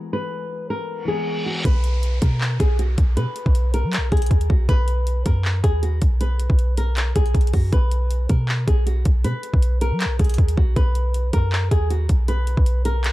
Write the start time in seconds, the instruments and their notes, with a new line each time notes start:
Already playing: felt piano E3 G#3 B3 E4 G#4
0.13 nylon-string guitar B4
0.70 nylon-string guitar A#4
0.89 reverse cymbal
1.05 felt piano E3 G#3 B3, nylon-string guitar G#4
1.09 felt piano E4 G#4
1.46 nylon-string guitar F#4
1.65 808-style bass B1, nylon-string guitar B4, kick, closed hi-hat, downlifter
1.84 closed hi-hat
2.03 closed hi-hat
2.22 808-style bass B2, nylon-string guitar A#4, kick, closed hi-hat
2.41 clap
2.60 808-style bass B1, nylon-string guitar G#4, kick, closed hi-hat
2.79 nylon-string guitar F#4, closed hi-hat
2.98 808-style bass B1, kick, closed hi-hat
3.17 808-style bass B2, nylon-string guitar B4, closed hi-hat
3.36 closed hi-hat
3.46 808-style bass B1, kick
3.55 closed hi-hat
3.74 nylon-string guitar A#4, closed hi-hat
3.84 808-style bass F#3
3.93 clap, closed hi-hat
3.98 808-style bass B1
4.12 808-style bass B1, nylon-string guitar G#4, kick, closed hi-hat
4.17 closed hi-hat
4.22 closed hi-hat
4.26 closed hi-hat
4.31 808-style bass D#2, kick, closed hi-hat
4.41 closed hi-hat
4.50 808-style bass B1, nylon-string guitar F#4, kick
4.69 808-style bass B1, nylon-string guitar B4, kick, closed hi-hat
4.88 closed hi-hat
5.07 closed hi-hat
5.26 808-style bass F#2, nylon-string guitar A#4, kick, closed hi-hat
5.45 clap
5.64 808-style bass D#2, nylon-string guitar G#4, kick, closed hi-hat
5.83 nylon-string guitar F#4, closed hi-hat
6.02 808-style bass B1, kick, closed hi-hat
6.21 nylon-string guitar B4, closed hi-hat
6.40 closed hi-hat
6.50 808-style bass B1, kick
6.59 closed hi-hat
6.77 nylon-string guitar A#4, closed hi-hat
6.97 clap, closed hi-hat
7.16 808-style bass B1, nylon-string guitar G#4, kick, closed hi-hat
7.26 closed hi-hat
7.34 808-style bass B1, kick, closed hi-hat
7.41 closed hi-hat
7.47 closed hi-hat
7.53 808-style bass F#2, nylon-string guitar F#4, kick, open hi-hat
7.73 808-style bass B1, nylon-string guitar B4, kick, closed hi-hat
7.91 closed hi-hat
8.11 closed hi-hat
8.29 808-style bass B2, nylon-string guitar A#4, kick, closed hi-hat
8.49 clap
8.68 808-style bass B1, nylon-string guitar G#4, kick, closed hi-hat
8.86 nylon-string guitar F#4, closed hi-hat
9.05 808-style bass B1, kick, closed hi-hat
9.24 808-style bass B2, nylon-string guitar B4, closed hi-hat
9.43 closed hi-hat
9.54 808-style bass B1, kick
9.62 closed hi-hat
9.81 nylon-string guitar A#4, closed hi-hat
9.91 808-style bass F#3
10.00 clap, closed hi-hat
10.05 808-style bass B1
10.19 808-style bass B1, nylon-string guitar G#4, kick, closed hi-hat
10.24 closed hi-hat
10.29 closed hi-hat
10.34 closed hi-hat
10.38 808-style bass D#2, kick, closed hi-hat
10.48 closed hi-hat
10.57 808-style bass B1, nylon-string guitar F#4, kick
10.76 808-style bass B1, nylon-string guitar B4, kick, closed hi-hat
10.95 closed hi-hat
11.14 closed hi-hat
11.33 808-style bass F#2, nylon-string guitar A#4, kick, closed hi-hat
11.52 clap
11.71 808-style bass D#2, nylon-string guitar G#4, kick, closed hi-hat
11.90 nylon-string guitar F#4, closed hi-hat
12.09 808-style bass B1, kick, closed hi-hat
12.28 nylon-string guitar B4, closed hi-hat
12.47 closed hi-hat
12.57 808-style bass B1, kick
12.66 closed hi-hat
12.85 nylon-string guitar A#4, closed hi-hat
13.04 clap, closed hi-hat